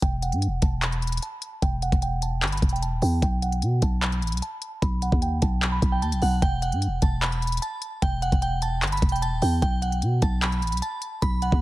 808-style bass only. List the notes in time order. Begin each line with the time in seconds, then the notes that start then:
0.02 E1
0.32 G2
0.47 E1
0.62 E1
1.62 E1
1.92 E1
2.42 G1
2.62 E1
2.92 D#1
3.02 E2
3.22 B1
3.62 B2
3.82 B1
4.22 A1
4.32 B1
4.82 B1
5.12 D#2
5.42 B1
5.82 B1
6.02 D#2
6.12 B1
6.22 B1
6.42 E1
6.72 G2
6.87 E1
7.02 E1
8.02 E1
8.32 E1
8.82 G1
9.02 E1
9.32 D#1
9.42 E2
9.62 B1
10.02 B2
10.22 B1
10.62 A1
10.72 B1
11.22 B1
11.52 D#2